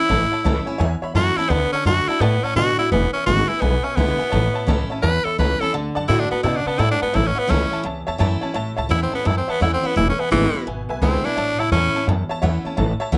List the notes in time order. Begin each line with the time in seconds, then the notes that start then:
Already playing: E4
0.09 A1 A2 C#5 E5 A5
0.32 C#5 E5 A5
0.44 C#2 E3 A3 C#4 E4 C#5 E5 A5
0.66 C#4 E4 C#5 E5 G#5, muted upright bass stroke
0.78 E2 C#5 E5 G#5
1.02 C#5 E5 B5, muted upright bass stroke
1.14 F#2 E3 A3 C#4 E4 F#4 C#5 E5 A5
1.37 C#4 E4 C#5 E5 A5, muted upright bass stroke
1.50 D2 D3 B3 D5 F#5 A5
1.72 C#4 D5 F#5 A5, muted upright bass stroke
1.85 F#2 D3 A3 D4 F#4 D5 F#5 A5
2.08 D4 E4 F#4 D5 F#5 A5, muted upright bass stroke
2.20 A2 B3 D5 F#5 A5
2.43 C#4 D5 F#5 A5, muted upright bass stroke
2.55 B2 D3 A3 D4 F#4 D5 F#5 G#5
2.78 D4 E4 F#4 D5 F#5 B5, muted upright bass stroke
2.91 E1 E2 B3 B4 E5 G#5
3.13 C#4 B4 E5 G#5
3.26 G#1 D3 G#3 B3 E4 F#4 B4 E5 G#5
3.48 B3 E4 B4 E5 G#5, muted upright bass stroke
3.60 B1 B2 B3 B4 E5 G#5
3.83 C#4 B4 E5 G#5, muted upright bass stroke
3.96 C#2 D3 G#3 B3 E4 B4 E5 G#5
4.18 B3 E4 B4 E5 G#5, muted upright bass stroke
4.30 A1 A2 C#5 E5 A5
4.54 C#5 E5 A5, muted upright bass stroke
4.67 C#2 E3 A3 C#4 E4 C#5 E5 A5
4.90 C#4 E4 C#5 E5 A5, muted upright bass stroke
5.02 E2 B4 C#5 E5 A5
5.24 A4 C#5 E5 B5, muted upright bass stroke
5.38 C#2 E3 A3 C#4 E4 B4 C#5 E5 A5
5.60 C#4 E4 A4 C#5 E5 A5, muted upright bass stroke
5.73 D2 D3 D5 F#5 A5
5.95 F#2 D5 F#5 A5
6.08 A2 D3 A3 D4 E4 F#4 D5 F#5 G#5
6.19 D4
6.31 B3 D4 F#4 D5 F#5 A5, muted upright bass stroke
6.43 B2 C#3 E4 D5 F#5 A5
6.56 D4
6.66 B3 D5 F#5 A5, muted upright bass stroke
6.79 G#2 A2 E4 D5 F#5 A5
6.91 D4
7.01 B3 D5 F#5 A5, muted upright bass stroke
7.13 A1 A2 E4 C#5 E5 A5
7.27 C#4
7.36 B3 C#5 E5 F#5, muted upright bass stroke
7.47 C#2 E3 A3 C#4 E4 C#5 E5 A5
7.71 C#5 E5 A5, muted upright bass stroke
7.84 C#2 E2 C#5 E5 A5
8.07 E2 C#5 E5 A5
8.18 F#2 E3 A3 C#4 E4 C#5 E5 A5
8.41 C#4 E4 C#5 E5 A5, muted upright bass stroke
8.54 A1 A2 C#5 E5 A5
8.77 C#2 C#5 E5 A5
8.89 E2 E3 A3 C#4 E4 C#5 E5 F#5
9.02 C4
9.12 B3 C#4 E4 C#5 E5 A5, muted upright bass stroke
9.24 E2 F#2 E4 C#5 E5 A5
9.38 C4
9.48 B3 C#5 E5 A5, muted upright bass stroke
9.60 E2 E3 A3 C#4 E4 C#5 E5 F#5
9.74 C4
9.83 B3 C#4 E4 C#5 E5 F#5, muted upright bass stroke
9.96 E1 E2 E4 B4 E5 G#5
10.09 C#4
10.18 B3 B4 E5 G#5, muted upright bass stroke
10.31 G#1 D3 E3 G#3 B3 E4 B4 E5 G#5
10.53 B3 E4 B4 E5 B5, muted upright bass stroke
10.66 G#1 B2 B4 E5 G#5
10.89 B1 B4 E5 G#5
11.02 C#2 D3 G#3 B3 C4 E4 B4 E5 G#5
11.24 B3 D4 E4 B4 E5 G#5
11.37 A1 A2 C#5 E5 A5
11.59 C#2 E4 C#5 E5 A5
11.72 E2 E3 A3 C#4 E4 C#5 E5 A5
11.95 C#4 E4 C#5 E5 A5, muted upright bass stroke
12.07 E2 F#2 C#5 E5 A5
12.29 C#5 E5 A5, muted upright bass stroke
12.42 E2 E3 A3 C#4 E4 C#5 E5 F#5
12.65 C#4 E4 C#5 E5 A5, muted upright bass stroke
12.77 A1 A2 C#5 E5 A5
13.00 C#5 E5 A5, muted upright bass stroke
13.12 C#2 E3 A3 C#4 E4 C#5 E5 F#5